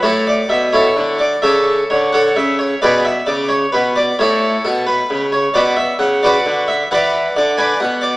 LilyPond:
<<
  \new Staff \with { instrumentName = "Harpsichord" } { \time 12/8 \key a \major \tempo 4. = 88 <e' a' cis''>8 d''8 e''8 <e' a' cis''>4 d''8 <a' cis'' e''>4 cis''8 <a' cis'' fis''>8 e''8 cis''8 | <gis' b' d''>8 e''8 d''8 cis''8 b'8 d''8 <e' a' cis''>4 a'8 b'4 cis''8 | <fis' b' d''>8 e''8 fis''8 <fis' b' d''>4 e''8 <b' d'' fis''>4 d''8 <b' d'' gis''>8 fis''8 d''8 | }
  \new Staff \with { instrumentName = "Harpsichord" } { \clef bass \time 12/8 \key a \major a,4 b,4 d4 cis4 d4 cis4 | b,4 cis4 b,4 a,4 b,4 cis4 | b,4 cis4 d4 e4 d4 b,4 | }
>>